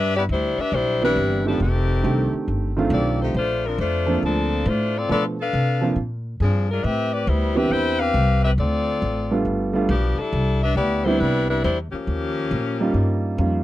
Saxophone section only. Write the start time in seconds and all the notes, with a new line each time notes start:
Already playing: D4 G4 B4 E5
0.17 B3 E4 G4 D5
0.32 G3 D4 E4 C5
0.60 D4 G4 B4 E5
0.74 G3 D4 E4 C5
1.03 G3 D4 E4 B4
1.48 F3 B3 D4 A4
1.61 D#3 A3 C4 G4
2.92 C4 G4 A4 D5
3.22 A3 D#4 G4 C5
3.36 A3 D4 F4 C5
3.65 F3 C4 D4 A#4
3.79 A3 D4 F4 C5
4.24 F3 C4 D4 A4
4.68 A3 D4 F4 C5
4.97 C4 F4 A4 D5
5.11 B3 F4 A4 D5
5.40 D4 A4 B4 F5
6.42 F3 C4 D4 G#4
6.71 G#3 D4 F4 A#4
6.85 C4 G4 B4 E5
7.13 C4 G4 B4 D5
7.28 G3 B3 E4 C5
7.57 C4 G4 B4 E5
7.71 E4 B4 C5 G5
7.99 C4 G4 B4 F5
8.44 C4 G4 B4 E5
8.59 C4 F4 A4 D5
9.90 F3 B3 D4 G4
10.19 G3 D4 E4 A4
10.63 D4 G4 B4 E5
10.77 B3 E4 G4 D5
11.05 G3 D4 E4 C5
11.20 G3 D4 E4 B4
11.49 G3 D4 E4 B4
11.64 G3 D4 E4 C5
11.92 F3 A#3 C#4 G4